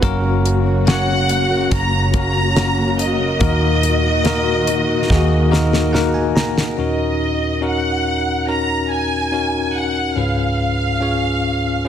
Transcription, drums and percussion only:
0.03 kick, closed hi-hat
0.46 closed hi-hat
0.87 snare, closed hi-hat
1.29 closed hi-hat
1.71 kick, closed hi-hat
2.14 kick, closed hi-hat
2.57 snare, closed hi-hat
2.99 closed hi-hat
3.41 kick, closed hi-hat
3.83 closed hi-hat
4.25 snare, closed hi-hat
4.67 closed hi-hat
5.10 kick, snare
5.53 snare
5.73 snare
5.95 snare
6.37 snare
6.58 snare

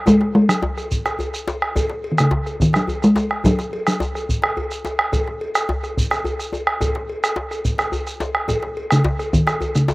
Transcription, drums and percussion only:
0.06 bombo rim, bombo low, cowbell, djembe slap, djembe bass, shekere
0.21 bombo rim, djembe slap
0.35 cowbell
0.49 bombo rim, cowbell, shekere
0.62 bombo rim, djembe slap, djembe tone, djembe bass
0.77 bombo rim, cowbell, shekere
0.91 bombo low, shekere
1.05 bombo rim, cowbell, djembe slap, shekere
1.19 cowbell, djembe bass, shekere
1.34 bombo rim, shekere
1.48 cowbell, djembe slap, djembe tone, shekere
1.62 bombo rim
1.76 bombo rim, bombo low, cowbell, djembe slap, djembe bass, shekere
1.89 djembe slap
2.04 cowbell
2.18 bombo rim, cowbell, shekere
2.31 bombo rim, djembe slap, djembe tone, djembe bass
2.46 bombo rim, cowbell, shekere
2.60 bombo low, shekere
2.73 bombo rim, cowbell, djembe slap, shekere
2.88 cowbell, djembe bass, shekere
3.02 bombo rim, shekere
3.16 cowbell, djembe slap, djembe tone, shekere
3.31 bombo rim
3.44 bombo rim, bombo low, cowbell, djembe bass, shekere
3.59 bombo rim, djembe slap, shekere
3.73 cowbell
3.87 bombo rim, cowbell, shekere
4.00 djembe slap, djembe tone, djembe bass, shekere
4.15 bombo rim, cowbell, shekere
4.29 bombo low, shekere
4.42 bombo rim, cowbell, djembe slap
4.57 cowbell, djembe bass
4.71 bombo rim, shekere
4.85 bombo rim, cowbell, djembe slap, djembe tone, shekere
4.99 bombo rim
5.12 bombo rim, bombo low, cowbell, djembe slap, djembe bass, shekere
5.27 bombo rim, djembe slap
5.41 cowbell
5.55 bombo rim, cowbell, shekere
5.69 bombo rim, djembe slap, djembe tone, djembe bass
5.83 bombo rim, cowbell, shekere
5.97 bombo low, shekere
6.11 bombo rim, cowbell, djembe slap, shekere
6.24 cowbell, djembe bass, shekere
6.39 bombo rim, shekere
6.53 cowbell, djembe tone, shekere
6.67 bombo rim
6.81 bombo rim, bombo low, cowbell, djembe slap, djembe bass, shekere
6.95 bombo rim, djembe slap
7.09 cowbell
7.24 bombo rim, cowbell, shekere
7.36 bombo rim, djembe slap, djembe tone
7.51 bombo rim, cowbell, shekere
7.65 bombo low, shekere
7.78 bombo rim, cowbell, djembe slap, shekere
7.92 cowbell, djembe bass, shekere
8.07 bombo rim, shekere
8.20 cowbell, djembe slap, djembe tone, shekere
8.35 bombo rim
8.48 bombo rim, bombo low, cowbell, djembe slap, djembe bass, shekere
8.62 bombo rim, djembe slap
8.77 cowbell
8.91 bombo rim, cowbell, shekere
9.04 bombo rim, djembe slap, djembe tone, djembe bass
9.19 bombo rim, cowbell, shekere
9.33 bombo low, shekere
9.47 bombo rim, cowbell, djembe slap, shekere
9.61 cowbell, djembe bass, shekere
9.75 bombo rim, shekere
9.88 cowbell, djembe slap, djembe tone, shekere

